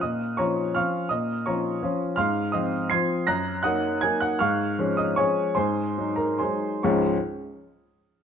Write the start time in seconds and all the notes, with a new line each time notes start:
0.01 A#2 D#5 D#6
0.37 F3 C#4 F4 C#5 A#5 C#6
0.75 F3 C#4 F4 F5 C#6 F6
1.09 A#2 D#5 D#6
1.46 F3 C#4 F4 C#5 A#5 C#6
1.83 F3 C#4 F4
2.16 G#2 F5 C6 F6
2.52 F3 C4 F4 D#5 D#6
2.90 F3 C4 F4 C6 G#6 C7
3.27 F#2 A#5 F#6 A#6
3.63 F#3 A#3 D#4 F#5 D#6 F#6
4.01 F#3 A#3 D#4 G#5 G#6
4.20 F#5 F#6
4.39 G#2 F5 C#6 F6
4.78 F3 G#3 C#4
4.97 D#5 D#6
5.16 F3 G#3 C#4 C#5 G#5 C#6
5.55 G#2 C5 G#5 C6
5.98 F#3 G#3 D#4
6.16 A#4 A#5
6.39 F#3 G#3 D#4 C5 G#5 C6
6.83 C#2 G#2 F3 G#3 C#4 F4 C#6